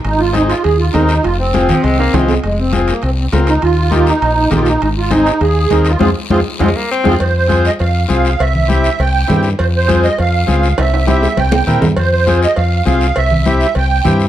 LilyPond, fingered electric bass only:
\new Staff \with { instrumentName = "Fingered electric bass" } { \clef bass \time 4/4 \key f \minor \tempo 4 = 201 aes,,2 ees,4 ees,4 | f,,2 c,4 c,4 | f,,2 c,4 des,4 | ees,2 bes,,4 bes,,4 |
aes,,2 ees,4 ees,4 | f,8 r8 f,8 r8 f,8 r4 f,8 | f,2 f,4 c,4 | c,2 c,4 g,4 |
f,2 f,4 des,4 | c,2 c,4 bes,8 g,8 | f,2 f,4 c,4 | c,2 c,4 g,4 | }